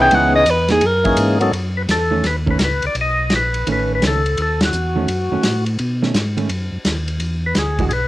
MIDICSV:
0, 0, Header, 1, 6, 480
1, 0, Start_track
1, 0, Tempo, 354191
1, 153, Time_signature, 4, 2, 24, 8
1, 10949, End_track
2, 0, Start_track
2, 0, Title_t, "Alto saxophone"
2, 0, Program_c, 0, 65
2, 25, Note_on_c, 0, 79, 127
2, 199, Note_on_c, 0, 78, 105
2, 219, Note_off_c, 0, 79, 0
2, 475, Note_off_c, 0, 78, 0
2, 483, Note_on_c, 0, 75, 109
2, 686, Note_on_c, 0, 71, 91
2, 707, Note_off_c, 0, 75, 0
2, 963, Note_off_c, 0, 71, 0
2, 971, Note_on_c, 0, 68, 95
2, 1169, Note_on_c, 0, 70, 88
2, 1190, Note_off_c, 0, 68, 0
2, 2019, Note_off_c, 0, 70, 0
2, 10949, End_track
3, 0, Start_track
3, 0, Title_t, "Tonewheel organ"
3, 0, Program_c, 1, 16
3, 0, Note_on_c, 1, 52, 69
3, 0, Note_on_c, 1, 59, 66
3, 0, Note_on_c, 1, 61, 59
3, 9, Note_on_c, 1, 63, 66
3, 21, Note_on_c, 1, 68, 81
3, 603, Note_off_c, 1, 52, 0
3, 606, Note_off_c, 1, 59, 0
3, 607, Note_off_c, 1, 61, 0
3, 612, Note_off_c, 1, 63, 0
3, 618, Note_off_c, 1, 68, 0
3, 1413, Note_on_c, 1, 52, 73
3, 1426, Note_on_c, 1, 58, 68
3, 1429, Note_on_c, 1, 61, 68
3, 1432, Note_on_c, 1, 68, 82
3, 1435, Note_on_c, 1, 63, 67
3, 1869, Note_off_c, 1, 52, 0
3, 1876, Note_off_c, 1, 58, 0
3, 1877, Note_off_c, 1, 61, 0
3, 1879, Note_off_c, 1, 68, 0
3, 1880, Note_off_c, 1, 63, 0
3, 1902, Note_on_c, 1, 59, 64
3, 1904, Note_on_c, 1, 54, 63
3, 1915, Note_on_c, 1, 61, 66
3, 1925, Note_on_c, 1, 63, 66
3, 1926, Note_on_c, 1, 69, 78
3, 2055, Note_off_c, 1, 59, 0
3, 2056, Note_off_c, 1, 54, 0
3, 2062, Note_off_c, 1, 61, 0
3, 2067, Note_off_c, 1, 63, 0
3, 2067, Note_off_c, 1, 69, 0
3, 2403, Note_on_c, 1, 71, 75
3, 2475, Note_off_c, 1, 71, 0
3, 2592, Note_on_c, 1, 69, 83
3, 3068, Note_off_c, 1, 69, 0
3, 3072, Note_on_c, 1, 71, 89
3, 3205, Note_off_c, 1, 71, 0
3, 3396, Note_on_c, 1, 71, 80
3, 3501, Note_off_c, 1, 71, 0
3, 3511, Note_on_c, 1, 70, 64
3, 3538, Note_off_c, 1, 70, 0
3, 3580, Note_on_c, 1, 71, 92
3, 3870, Note_off_c, 1, 71, 0
3, 3885, Note_on_c, 1, 74, 75
3, 4015, Note_off_c, 1, 74, 0
3, 4081, Note_on_c, 1, 75, 94
3, 4532, Note_off_c, 1, 75, 0
3, 4550, Note_on_c, 1, 71, 84
3, 5007, Note_off_c, 1, 71, 0
3, 5042, Note_on_c, 1, 71, 96
3, 5321, Note_off_c, 1, 71, 0
3, 5353, Note_on_c, 1, 71, 85
3, 5483, Note_off_c, 1, 71, 0
3, 5520, Note_on_c, 1, 69, 79
3, 5972, Note_off_c, 1, 69, 0
3, 5989, Note_on_c, 1, 69, 78
3, 6247, Note_off_c, 1, 69, 0
3, 6304, Note_on_c, 1, 66, 73
3, 7653, Note_off_c, 1, 66, 0
3, 10113, Note_on_c, 1, 71, 72
3, 10262, Note_off_c, 1, 71, 0
3, 10278, Note_on_c, 1, 68, 82
3, 10643, Note_off_c, 1, 68, 0
3, 10693, Note_on_c, 1, 68, 69
3, 10737, Note_off_c, 1, 68, 0
3, 10747, Note_on_c, 1, 71, 94
3, 10949, Note_off_c, 1, 71, 0
3, 10949, End_track
4, 0, Start_track
4, 0, Title_t, "Hollow-body jazz guitar"
4, 0, Program_c, 2, 26
4, 165, Note_on_c, 2, 56, 64
4, 172, Note_on_c, 2, 59, 78
4, 180, Note_on_c, 2, 64, 78
4, 441, Note_off_c, 2, 56, 0
4, 445, Note_off_c, 2, 59, 0
4, 449, Note_off_c, 2, 64, 0
4, 954, Note_on_c, 2, 52, 67
4, 957, Note_on_c, 2, 58, 72
4, 968, Note_on_c, 2, 63, 77
4, 1101, Note_off_c, 2, 52, 0
4, 1102, Note_off_c, 2, 58, 0
4, 1108, Note_off_c, 2, 63, 0
4, 2861, Note_on_c, 2, 51, 60
4, 2867, Note_on_c, 2, 57, 64
4, 2878, Note_on_c, 2, 61, 73
4, 3015, Note_off_c, 2, 51, 0
4, 3018, Note_off_c, 2, 57, 0
4, 3024, Note_off_c, 2, 61, 0
4, 3340, Note_on_c, 2, 51, 52
4, 3355, Note_on_c, 2, 57, 52
4, 3358, Note_on_c, 2, 61, 61
4, 3495, Note_off_c, 2, 51, 0
4, 3502, Note_off_c, 2, 57, 0
4, 3504, Note_off_c, 2, 61, 0
4, 4973, Note_on_c, 2, 51, 49
4, 4985, Note_on_c, 2, 57, 48
4, 4989, Note_on_c, 2, 61, 63
4, 5696, Note_off_c, 2, 51, 0
4, 5702, Note_off_c, 2, 57, 0
4, 5704, Note_off_c, 2, 61, 0
4, 6720, Note_on_c, 2, 51, 65
4, 6730, Note_on_c, 2, 57, 74
4, 6746, Note_on_c, 2, 61, 71
4, 6866, Note_off_c, 2, 51, 0
4, 6870, Note_off_c, 2, 57, 0
4, 6878, Note_off_c, 2, 61, 0
4, 7210, Note_on_c, 2, 51, 57
4, 7223, Note_on_c, 2, 57, 52
4, 7226, Note_on_c, 2, 61, 62
4, 7350, Note_off_c, 2, 51, 0
4, 7357, Note_off_c, 2, 57, 0
4, 7358, Note_off_c, 2, 61, 0
4, 8165, Note_on_c, 2, 51, 53
4, 8168, Note_on_c, 2, 57, 57
4, 8181, Note_on_c, 2, 61, 66
4, 8307, Note_off_c, 2, 51, 0
4, 8309, Note_off_c, 2, 57, 0
4, 8315, Note_off_c, 2, 61, 0
4, 8632, Note_on_c, 2, 51, 56
4, 8641, Note_on_c, 2, 57, 54
4, 8652, Note_on_c, 2, 61, 63
4, 8781, Note_off_c, 2, 51, 0
4, 8785, Note_off_c, 2, 57, 0
4, 8791, Note_off_c, 2, 61, 0
4, 10571, Note_on_c, 2, 52, 59
4, 10575, Note_on_c, 2, 56, 58
4, 10582, Note_on_c, 2, 62, 57
4, 10591, Note_on_c, 2, 66, 66
4, 10709, Note_off_c, 2, 52, 0
4, 10712, Note_off_c, 2, 56, 0
4, 10715, Note_off_c, 2, 62, 0
4, 10719, Note_off_c, 2, 66, 0
4, 10949, End_track
5, 0, Start_track
5, 0, Title_t, "Tonewheel organ"
5, 0, Program_c, 3, 16
5, 154, Note_on_c, 3, 37, 82
5, 620, Note_off_c, 3, 37, 0
5, 629, Note_on_c, 3, 40, 88
5, 1097, Note_off_c, 3, 40, 0
5, 1110, Note_on_c, 3, 42, 86
5, 1578, Note_off_c, 3, 42, 0
5, 1587, Note_on_c, 3, 44, 97
5, 2057, Note_off_c, 3, 44, 0
5, 2057, Note_on_c, 3, 42, 73
5, 2532, Note_off_c, 3, 42, 0
5, 2553, Note_on_c, 3, 40, 78
5, 3020, Note_off_c, 3, 40, 0
5, 3034, Note_on_c, 3, 39, 82
5, 3501, Note_off_c, 3, 39, 0
5, 3514, Note_on_c, 3, 37, 86
5, 3807, Note_off_c, 3, 37, 0
5, 3840, Note_on_c, 3, 37, 37
5, 3921, Note_off_c, 3, 37, 0
5, 3995, Note_on_c, 3, 35, 80
5, 4462, Note_off_c, 3, 35, 0
5, 4471, Note_on_c, 3, 34, 84
5, 4940, Note_off_c, 3, 34, 0
5, 4967, Note_on_c, 3, 33, 77
5, 5428, Note_off_c, 3, 33, 0
5, 5448, Note_on_c, 3, 37, 95
5, 5908, Note_off_c, 3, 37, 0
5, 5936, Note_on_c, 3, 39, 83
5, 6392, Note_off_c, 3, 39, 0
5, 6408, Note_on_c, 3, 40, 77
5, 6868, Note_off_c, 3, 40, 0
5, 6885, Note_on_c, 3, 42, 73
5, 7173, Note_off_c, 3, 42, 0
5, 7198, Note_on_c, 3, 42, 39
5, 7280, Note_off_c, 3, 42, 0
5, 7365, Note_on_c, 3, 45, 87
5, 7827, Note_off_c, 3, 45, 0
5, 7853, Note_on_c, 3, 47, 79
5, 8311, Note_off_c, 3, 47, 0
5, 8318, Note_on_c, 3, 44, 79
5, 8783, Note_off_c, 3, 44, 0
5, 8790, Note_on_c, 3, 42, 69
5, 9084, Note_off_c, 3, 42, 0
5, 9106, Note_on_c, 3, 42, 37
5, 9190, Note_off_c, 3, 42, 0
5, 9274, Note_on_c, 3, 39, 78
5, 9740, Note_off_c, 3, 39, 0
5, 9748, Note_on_c, 3, 40, 80
5, 10216, Note_off_c, 3, 40, 0
5, 10246, Note_on_c, 3, 38, 75
5, 10706, Note_off_c, 3, 38, 0
5, 10717, Note_on_c, 3, 35, 84
5, 10949, Note_off_c, 3, 35, 0
5, 10949, End_track
6, 0, Start_track
6, 0, Title_t, "Drums"
6, 149, Note_on_c, 9, 51, 63
6, 285, Note_off_c, 9, 51, 0
6, 623, Note_on_c, 9, 44, 53
6, 623, Note_on_c, 9, 51, 71
6, 759, Note_off_c, 9, 44, 0
6, 759, Note_off_c, 9, 51, 0
6, 928, Note_on_c, 9, 51, 52
6, 931, Note_on_c, 9, 38, 41
6, 1064, Note_off_c, 9, 51, 0
6, 1066, Note_off_c, 9, 38, 0
6, 1099, Note_on_c, 9, 51, 66
6, 1234, Note_off_c, 9, 51, 0
6, 1422, Note_on_c, 9, 51, 50
6, 1428, Note_on_c, 9, 36, 62
6, 1557, Note_off_c, 9, 51, 0
6, 1563, Note_off_c, 9, 36, 0
6, 1581, Note_on_c, 9, 44, 54
6, 1581, Note_on_c, 9, 51, 80
6, 1716, Note_off_c, 9, 44, 0
6, 1716, Note_off_c, 9, 51, 0
6, 1907, Note_on_c, 9, 51, 46
6, 2043, Note_off_c, 9, 51, 0
6, 2078, Note_on_c, 9, 51, 55
6, 2213, Note_off_c, 9, 51, 0
6, 2558, Note_on_c, 9, 44, 62
6, 2558, Note_on_c, 9, 51, 69
6, 2561, Note_on_c, 9, 38, 60
6, 2693, Note_off_c, 9, 44, 0
6, 2693, Note_off_c, 9, 51, 0
6, 2696, Note_off_c, 9, 38, 0
6, 3031, Note_on_c, 9, 51, 57
6, 3034, Note_on_c, 9, 38, 37
6, 3167, Note_off_c, 9, 51, 0
6, 3169, Note_off_c, 9, 38, 0
6, 3351, Note_on_c, 9, 36, 49
6, 3486, Note_off_c, 9, 36, 0
6, 3510, Note_on_c, 9, 44, 62
6, 3510, Note_on_c, 9, 51, 68
6, 3513, Note_on_c, 9, 38, 69
6, 3646, Note_off_c, 9, 44, 0
6, 3646, Note_off_c, 9, 51, 0
6, 3648, Note_off_c, 9, 38, 0
6, 3825, Note_on_c, 9, 51, 42
6, 3960, Note_off_c, 9, 51, 0
6, 3998, Note_on_c, 9, 51, 52
6, 4134, Note_off_c, 9, 51, 0
6, 4473, Note_on_c, 9, 44, 49
6, 4473, Note_on_c, 9, 51, 65
6, 4475, Note_on_c, 9, 38, 65
6, 4608, Note_off_c, 9, 44, 0
6, 4608, Note_off_c, 9, 51, 0
6, 4611, Note_off_c, 9, 38, 0
6, 4799, Note_on_c, 9, 51, 42
6, 4934, Note_off_c, 9, 51, 0
6, 4973, Note_on_c, 9, 51, 60
6, 5108, Note_off_c, 9, 51, 0
6, 5449, Note_on_c, 9, 44, 56
6, 5449, Note_on_c, 9, 51, 66
6, 5452, Note_on_c, 9, 38, 69
6, 5585, Note_off_c, 9, 44, 0
6, 5585, Note_off_c, 9, 51, 0
6, 5587, Note_off_c, 9, 38, 0
6, 5770, Note_on_c, 9, 51, 42
6, 5906, Note_off_c, 9, 51, 0
6, 5929, Note_on_c, 9, 51, 56
6, 6065, Note_off_c, 9, 51, 0
6, 6244, Note_on_c, 9, 51, 66
6, 6247, Note_on_c, 9, 38, 78
6, 6380, Note_off_c, 9, 51, 0
6, 6383, Note_off_c, 9, 38, 0
6, 6408, Note_on_c, 9, 44, 55
6, 6544, Note_off_c, 9, 44, 0
6, 6889, Note_on_c, 9, 51, 61
6, 7025, Note_off_c, 9, 51, 0
6, 7363, Note_on_c, 9, 44, 63
6, 7363, Note_on_c, 9, 51, 70
6, 7366, Note_on_c, 9, 38, 69
6, 7499, Note_off_c, 9, 44, 0
6, 7499, Note_off_c, 9, 51, 0
6, 7501, Note_off_c, 9, 38, 0
6, 7673, Note_on_c, 9, 51, 42
6, 7808, Note_off_c, 9, 51, 0
6, 7841, Note_on_c, 9, 51, 51
6, 7977, Note_off_c, 9, 51, 0
6, 8169, Note_on_c, 9, 38, 33
6, 8305, Note_off_c, 9, 38, 0
6, 8327, Note_on_c, 9, 44, 56
6, 8327, Note_on_c, 9, 51, 63
6, 8329, Note_on_c, 9, 38, 62
6, 8462, Note_off_c, 9, 44, 0
6, 8462, Note_off_c, 9, 51, 0
6, 8465, Note_off_c, 9, 38, 0
6, 8640, Note_on_c, 9, 51, 43
6, 8776, Note_off_c, 9, 51, 0
6, 8801, Note_on_c, 9, 51, 58
6, 8936, Note_off_c, 9, 51, 0
6, 9280, Note_on_c, 9, 44, 55
6, 9280, Note_on_c, 9, 51, 70
6, 9283, Note_on_c, 9, 38, 66
6, 9415, Note_off_c, 9, 44, 0
6, 9415, Note_off_c, 9, 51, 0
6, 9418, Note_off_c, 9, 38, 0
6, 9590, Note_on_c, 9, 51, 41
6, 9725, Note_off_c, 9, 51, 0
6, 9753, Note_on_c, 9, 51, 53
6, 9889, Note_off_c, 9, 51, 0
6, 10230, Note_on_c, 9, 44, 52
6, 10230, Note_on_c, 9, 51, 60
6, 10232, Note_on_c, 9, 38, 62
6, 10365, Note_off_c, 9, 44, 0
6, 10365, Note_off_c, 9, 51, 0
6, 10368, Note_off_c, 9, 38, 0
6, 10553, Note_on_c, 9, 36, 54
6, 10553, Note_on_c, 9, 51, 43
6, 10689, Note_off_c, 9, 36, 0
6, 10689, Note_off_c, 9, 51, 0
6, 10714, Note_on_c, 9, 51, 51
6, 10850, Note_off_c, 9, 51, 0
6, 10949, End_track
0, 0, End_of_file